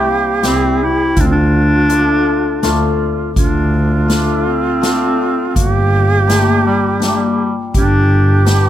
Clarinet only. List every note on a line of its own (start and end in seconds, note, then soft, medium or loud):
0.00 0.11 A3 medium
0.10 0.45 A#3 medium
0.47 0.85 C4 loud
0.83 1.22 E4 loud
1.20 1.33 C4 medium
1.20 1.25 D4 medium
1.32 3.00 D4 loud
3.37 4.06 D4 medium
4.10 4.48 D4 medium
4.47 5.49 C4 medium
5.49 5.58 C4 medium
5.56 6.31 A#3 medium
6.29 6.65 A3 medium
6.66 6.99 G3 medium
7.03 7.11 G3 medium
7.09 7.18 A3 medium
7.16 7.56 G3 medium
7.76 8.54 D4 loud